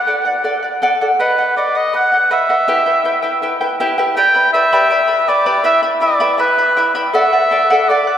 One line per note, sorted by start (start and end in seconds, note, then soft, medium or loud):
0.00 0.78 F#5 medium
0.07 0.26 A4 medium
0.07 0.25 D5 medium
0.07 0.24 F#5 medium
0.25 0.43 D5 soft
0.25 0.44 F#5 medium
0.44 0.63 A4 medium
0.44 0.63 D5 medium
0.44 0.61 F#5 medium
0.63 0.81 D5 soft
0.63 0.81 F#5 soft
0.82 1.00 A4 medium
0.82 1.00 D5 medium
0.82 1.00 F#5 medium
1.01 1.20 A4 soft
1.01 1.19 D5 medium
1.01 1.19 F#5 medium
1.20 1.38 B4 medium
1.20 1.54 B4 medium
1.20 1.38 D#5 medium
1.20 1.37 F#5 medium
1.38 1.56 D#5 soft
1.38 1.57 F#5 soft
1.56 1.75 B4 medium
1.56 1.79 D5 medium
1.56 1.75 D#5 soft
1.56 1.74 F#5 medium
1.75 1.93 D#5 soft
1.75 1.95 D#5 medium
1.75 1.93 F#5 medium
1.93 2.12 B4 medium
1.93 2.12 D#5 medium
1.93 2.11 F#5 medium
1.93 2.29 F#5 medium
2.12 2.29 D#5 soft
2.12 2.30 F#5 soft
2.31 2.49 B4 medium
2.31 2.49 D#5 medium
2.31 3.39 E5 medium
2.31 2.48 F#5 medium
2.49 2.67 B4 soft
2.49 2.68 D#5 medium
2.49 2.67 F#5 medium
2.68 2.86 E4 medium
2.68 2.87 G4 medium
2.68 2.86 B4 medium
2.68 2.87 E5 medium
2.68 2.85 G5 medium
2.86 3.04 E4 soft
2.86 3.04 B4 soft
2.86 3.04 G5 soft
3.04 3.23 E4 medium
3.04 3.22 B4 medium
3.04 3.23 E5 medium
3.04 3.21 G5 medium
3.22 3.41 E4 soft
3.22 3.42 B4 medium
3.22 3.42 G5 medium
3.42 3.61 E4 medium
3.42 3.60 B4 medium
3.42 3.61 E5 medium
3.42 3.59 G5 medium
3.61 3.79 E4 soft
3.61 3.79 B4 medium
3.61 3.79 G5 medium
3.80 3.98 E4 medium
3.80 3.98 G4 medium
3.80 3.98 B4 medium
3.80 3.97 E5 medium
3.80 3.97 G5 medium
3.98 4.17 E4 medium
3.98 4.15 G4 medium
3.98 4.16 B4 medium
3.98 4.16 E5 medium
3.98 4.16 G5 medium
4.17 4.35 G4 medium
4.17 4.35 B4 medium
4.17 4.35 D5 medium
4.17 4.35 G5 medium
4.17 4.52 G5 loud
4.17 4.34 B5 medium
4.35 4.53 B4 soft
4.35 4.53 D5 soft
4.35 4.54 B5 medium
4.53 4.72 B4 medium
4.53 4.72 D5 medium
4.53 5.21 E5 loud
4.53 4.72 G5 soft
4.53 4.71 B5 medium
4.73 4.92 G4 medium
4.73 4.89 B4 medium
4.73 4.90 D5 medium
4.73 4.89 G5 medium
4.73 4.90 B5 medium
4.90 5.08 B4 medium
4.90 5.08 D5 medium
4.90 5.09 G5 medium
4.90 5.06 B5 medium
5.08 5.27 B4 soft
5.08 5.27 D5 soft
5.08 5.27 B5 medium
5.21 5.30 E5 medium
5.28 5.45 B4 medium
5.28 5.45 D5 medium
5.28 5.65 D5 medium
5.28 5.45 G5 medium
5.28 5.45 B5 medium
5.46 5.63 G4 medium
5.46 5.63 B4 medium
5.46 5.64 D5 medium
5.46 5.63 G5 medium
5.46 5.63 B5 medium
5.64 5.82 E4 medium
5.64 5.83 B4 medium
5.64 5.82 E5 medium
5.64 5.81 E5 medium
5.64 5.84 G5 medium
5.64 5.81 B5 medium
5.83 6.00 E4 soft
5.83 6.00 E5 soft
5.83 6.01 B5 medium
6.00 6.19 E4 medium
6.00 6.37 D5 medium
6.00 6.19 E5 medium
6.00 6.19 G5 medium
6.00 6.19 B5 medium
6.20 6.38 E4 medium
6.20 6.40 B4 medium
6.20 6.38 E5 medium
6.20 6.37 G5 medium
6.20 6.38 B5 medium
6.38 6.58 E4 medium
6.38 6.92 B4 medium
6.38 6.58 E5 medium
6.38 6.58 G5 medium
6.38 6.57 B5 medium
6.58 6.76 E4 soft
6.58 6.77 E5 soft
6.58 6.77 B5 medium
6.77 6.94 E4 medium
6.77 6.94 E5 medium
6.77 6.95 G5 medium
6.77 6.94 B5 medium
6.95 7.14 E4 medium
6.95 7.14 B4 medium
6.95 7.13 E5 medium
6.95 7.14 G5 medium
6.95 7.14 B5 medium
7.13 7.33 A4 medium
7.13 7.32 D5 medium
7.13 7.91 E5 medium
7.13 7.31 F#5 medium
7.32 7.51 D5 soft
7.32 7.51 F#5 medium
7.51 7.70 A4 medium
7.51 7.70 D5 medium
7.51 7.69 F#5 medium
7.70 7.88 A4 medium
7.70 7.89 D5 medium
7.70 7.89 F#5 medium
7.89 8.07 A4 medium
7.89 8.18 D5 medium
7.89 8.07 D5 medium
7.89 8.06 F#5 medium
8.07 8.18 D5 soft
8.07 8.18 F#5 medium